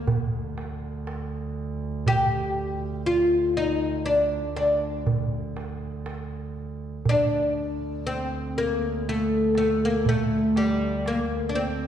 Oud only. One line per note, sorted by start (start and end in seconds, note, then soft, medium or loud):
2.08 3.06 G4 medium
3.06 3.57 F4 medium
3.57 4.05 D#4 medium
4.06 4.53 D4 medium
4.56 5.03 D4 medium
7.09 8.11 D4 medium
8.07 8.53 C4 medium
8.58 9.09 A#3 medium
9.09 9.56 A3 medium
9.58 9.80 A3 medium
9.85 10.08 A#3 medium
10.09 10.59 A3 medium
10.57 11.08 G3 medium
11.07 11.51 A#3 medium
11.49 11.56 D4 medium
11.55 11.87 C4 medium